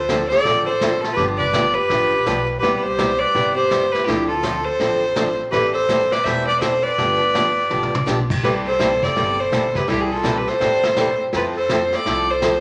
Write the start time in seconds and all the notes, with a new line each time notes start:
Already playing: D2 A4 C5
0.09 D3 F3 C4 D4 A4, kick, snare, hi-hat pedal
0.28 A4 D5, snare
0.45 A1 D3 F3 C4 D4 A4, brush sweep, kick, snare
0.65 A4 C5
0.81 D3 F3 C4 D4 A4, kick, snare, hi-hat pedal
1.01 F4 A4, snare
1.13 G4 B4
1.17 G1 D3 F3 B3 D4 G4, brush sweep, kick, snare
1.37 B4 D5, kick
1.53 D3 F3 B3 D4 G4, kick, snare, hi-hat pedal
1.74 G4 B4
1.90 A1 D3 F3 B3 D4 G4, brush sweep, kick, snare
2.26 B1 D3 F3 B3 D4 G4, kick, snare, hi-hat pedal
2.59 C2 C3 G3 B3 E4 G4 B4, brush sweep, kick, snare
2.63 G4
2.76 G4 B4
2.83 G4 C5
2.98 C3 G3 B3 E4 G4, kick, snare, hi-hat pedal
3.19 B4 D5
3.34 G1 C3 G3 B3 E4 G4, brush sweep, kick, snare
3.56 G4 C5
3.70 C3 G3 B3 E4 G4, kick, snare, hi-hat pedal
3.92 G4 B4, snare
4.04 D2 D3 F3 C4 D4 E4 G4, brush sweep, kick, snare
4.09 A4
4.28 F4 A4
4.43 D3 F3 C4 D4 A4, kick, snare, hi-hat pedal
4.64 A4 C5
4.80 A1 D3 F3 C4 D4 A4, brush sweep, kick, snare
5.16 D3 F3 C4 D4 A4, kick, snare, hi-hat pedal
5.51 A1 E3 G3 C4 E4 G4 A4 B4, brush sweep, kick, snare
5.73 A4 C5
5.89 E3 G3 C4 E4 A4, kick, snare, hi-hat pedal
6.11 B4 D5, snare
6.24 E1 E3 G3 C4 E4 A4 C5 E5, brush sweep, kick, snare
6.47 B4 D5
6.60 E3 G3 C4 E4 A4 C5, kick, snare, hi-hat pedal
6.83 B4 D5
6.98 G1 D3 F3 B3 D4 G4, brush sweep, kick, snare
7.34 D3 F3 B3 D4 G4, kick, snare, hi-hat pedal
7.70 A1 D3 F3 B3 D4 G4, mid tom
7.83 mid tom
7.95 mid tom
8.06 B1 D3 F3 B3 D4 G4, snare, hi-hat pedal
8.30 kick, crash
8.43 C2 C3 E3 G3 C4 E4 G4 A4 B4, brush sweep, kick, snare
8.66 A4 C5
8.79 C3 E3 G3 C4 E4 A4, kick, snare, hi-hat pedal
9.03 A4 D5, kick, snare
9.16 G1 C3 E3 G3 C4 E4 A4, brush sweep, kick, snare
9.40 A4 C5
9.52 C3 E3 G3 C4 E4 A4, kick, snare, hi-hat pedal
9.75 G4 B4, kick, snare
9.87 C2 C3 E3 G3 C4 E4 G4 A4, brush sweep, kick, snare
10.01 E4 G#4
10.12 F4 A4
10.23 C3 E3 G3 C4 E4 A4, kick, snare, hi-hat pedal
10.38 G4 B4
10.48 A4 C5, snare
10.60 A2 C3 E3 G3 C4 E4 A4, brush sweep, kick, snare
10.83 snare
10.97 C3 E3 G3 C4 E4 A4, kick, snare, hi-hat pedal
11.33 F2 F3 C4 E4 F4 A4 B4, brush sweep, kick, snare
11.57 A4 C5
11.69 F3 C4 E4 A4, kick, snare, hi-hat pedal
11.84 A4 C5
11.93 A4 D5, snare
12.05 C2 F3 C4 E4 A4, brush sweep, kick, snare
12.31 A4 C5
12.42 F3 C4 E4 A4, kick, snare, hi-hat pedal